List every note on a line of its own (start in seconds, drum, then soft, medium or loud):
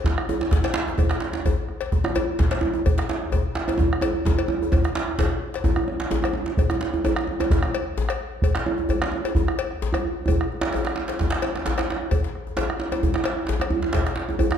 0.04 bombo rim soft
0.04 bombo low loud
0.04 djembe slap soft
0.04 djembe slap medium
0.04 djembe bass medium
0.18 bombo rim medium
0.18 djembe slap soft
0.29 djembe tone medium
0.41 djembe slap medium
0.51 bombo low loud
0.51 djembe slap medium
0.51 djembe bass medium
0.64 cowbell medium
0.64 djembe slap medium
0.64 djembe slap soft
0.74 djembe slap loud
0.88 djembe slap soft
0.88 djembe tone medium
0.98 bombo rim soft
0.98 bombo low loud
0.98 cowbell soft
0.98 djembe tone medium
0.98 djembe bass medium
1.09 bombo rim medium
1.09 djembe slap medium
1.20 bombo rim soft
1.20 djembe slap medium
1.33 djembe slap medium
1.33 djembe slap soft
1.45 bombo low medium
1.45 cowbell soft
1.45 djembe tone medium
1.45 djembe bass medium
1.69 bombo rim soft
1.81 cowbell medium
1.81 djembe slap medium
1.92 bombo rim soft
1.92 bombo low loud
1.92 djembe slap soft
1.92 djembe bass medium
2.04 bombo rim medium
2.04 djembe slap soft
2.04 djembe tone loud
2.15 cowbell medium
2.15 djembe tone medium
2.39 bombo low loud
2.39 djembe slap medium
2.39 djembe bass medium
2.51 cowbell medium
2.51 djembe slap medium
2.51 djembe slap soft
2.61 djembe tone loud
2.74 djembe slap soft
2.74 djembe tone medium
2.86 bombo rim soft
2.86 bombo low loud
2.86 cowbell medium
2.86 djembe bass medium
2.98 bombo rim medium
2.98 djembe slap medium
3.09 bombo rim soft
3.09 djembe slap medium
3.22 djembe slap soft
3.32 bombo low medium
3.32 cowbell soft
3.32 djembe tone medium
3.32 djembe bass medium
3.55 bombo rim soft
3.55 djembe slap medium
3.68 cowbell soft
3.68 djembe slap medium
3.68 djembe tone medium
3.78 bombo low medium
3.78 djembe slap soft
3.78 djembe tone loud
3.78 djembe bass medium
3.92 bombo rim medium
3.92 djembe slap soft
4.01 cowbell medium
4.01 djembe tone loud
4.01 djembe tone medium
4.25 bombo low loud
4.25 djembe slap medium
4.25 djembe tone medium
4.25 djembe bass medium
4.39 cowbell medium
4.48 djembe tone loud
4.62 djembe tone medium
4.72 bombo rim soft
4.72 bombo low loud
4.72 cowbell soft
4.72 djembe slap soft
4.72 djembe tone medium
4.72 djembe bass medium
4.85 bombo rim medium
4.85 djembe slap medium
4.95 djembe slap loud
5.19 bombo low medium
5.19 cowbell soft
5.19 djembe slap loud
5.19 djembe tone medium
5.19 djembe bass medium
5.54 bombo rim soft
5.54 cowbell soft
5.54 djembe slap medium
5.64 bombo low medium
5.64 djembe slap soft
5.64 djembe tone medium
5.64 djembe bass medium
5.76 bombo rim medium
5.76 djembe tone medium
5.88 bombo rim soft
5.88 djembe tone medium
6.00 bombo rim soft
6.00 djembe slap medium
6.11 djembe slap medium
6.11 djembe tone medium
6.11 djembe bass medium
6.22 bombo rim medium
6.22 djembe tone medium
6.24 cowbell medium
6.24 djembe tone medium
6.33 djembe tone medium
6.46 djembe slap medium
6.57 bombo low loud
6.57 cowbell soft
6.57 djembe bass medium
6.70 bombo rim medium
6.70 djembe slap medium
6.70 djembe tone medium
6.81 djembe slap medium
6.81 djembe slap soft
6.94 djembe tone medium
6.94 djembe tone soft
7.05 cowbell soft
7.05 djembe tone loud
7.05 djembe bass medium
7.16 bombo rim medium
7.16 djembe slap medium
7.27 djembe tone medium
7.40 bombo rim soft
7.40 cowbell medium
7.40 djembe slap medium
7.40 djembe tone loud
7.50 bombo low loud
7.50 djembe slap soft
7.50 djembe slap medium
7.50 djembe tone medium
7.50 djembe bass medium
7.63 bombo rim medium
7.63 djembe tone medium
7.73 bombo rim soft
7.73 cowbell medium
7.86 bombo rim soft
7.98 djembe slap medium
7.98 djembe bass medium
8.09 bombo rim medium
8.09 cowbell medium
8.09 djembe tone medium
8.42 bombo low loud
8.42 cowbell medium
8.42 djembe bass medium
8.55 bombo rim medium
8.55 djembe slap medium
8.66 djembe slap soft
8.66 djembe tone medium
8.78 djembe tone medium
8.89 cowbell soft
8.89 djembe bass medium
9.02 bombo rim medium
9.02 djembe slap medium
9.12 djembe tone medium
9.24 bombo rim soft
9.24 cowbell medium
9.24 djembe slap medium
9.35 bombo low medium
9.35 djembe slap soft
9.35 djembe tone medium
9.35 djembe bass medium
9.48 bombo rim medium
9.59 bombo rim soft
9.59 cowbell medium
9.71 bombo rim soft
9.82 djembe slap medium
9.82 djembe bass medium
9.93 bombo rim medium
9.93 cowbell medium
9.93 djembe tone medium
9.93 djembe bass medium
10.26 bombo low medium
10.26 cowbell soft
10.26 djembe bass medium
10.29 djembe bass medium
10.41 bombo rim medium
10.52 djembe slap soft
10.61 djembe slap loud
10.61 djembe tone medium
10.72 cowbell soft
10.72 djembe slap medium
10.72 djembe bass medium
10.85 bombo rim medium
10.85 djembe slap medium
10.96 djembe slap medium
11.08 bombo rim soft
11.08 cowbell soft
11.08 djembe slap medium
11.19 bombo low medium
11.19 djembe slap medium
11.19 djembe slap soft
11.19 djembe tone medium
11.19 djembe bass medium
11.30 bombo rim medium
11.30 djembe slap medium
11.33 djembe slap soft
11.42 cowbell medium
11.42 djembe slap medium
11.42 djembe slap soft
11.55 bombo rim soft
11.55 djembe slap medium
11.66 djembe slap medium
11.66 djembe bass medium
11.78 bombo rim medium
11.78 cowbell medium
11.78 djembe slap soft
11.78 djembe slap medium
11.78 djembe tone medium
11.89 bombo rim soft
11.89 djembe slap medium
12.01 djembe slap soft
12.11 bombo rim soft
12.11 bombo low medium
12.11 cowbell soft
12.11 djembe bass medium
12.24 djembe slap medium
12.35 bombo rim soft
12.35 djembe slap soft
12.47 djembe tone soft
12.57 cowbell soft
12.57 djembe slap medium
12.57 djembe bass medium
12.70 bombo rim medium
12.80 djembe slap medium
12.92 cowbell medium
12.92 djembe slap medium
12.92 djembe tone medium
13.03 bombo low medium
13.03 djembe slap soft
13.03 djembe tone medium
13.03 djembe bass medium
13.14 bombo rim medium
13.14 djembe slap medium
13.24 bombo rim soft
13.24 cowbell medium
13.24 djembe slap medium
13.39 bombo rim soft
13.47 djembe slap medium
13.49 djembe slap medium
13.49 djembe bass medium
13.60 bombo rim medium
13.60 cowbell medium
13.60 djembe tone medium
13.71 djembe bass medium
13.82 djembe slap medium
13.93 bombo low medium
13.93 cowbell soft
13.93 djembe slap medium
13.93 djembe bass medium
14.07 bombo rim medium
14.07 djembe slap medium
14.16 djembe slap medium
14.18 djembe slap soft
14.29 djembe tone medium
14.29 djembe tone soft
14.39 cowbell soft
14.39 djembe bass medium
14.51 bombo rim medium
14.51 djembe slap medium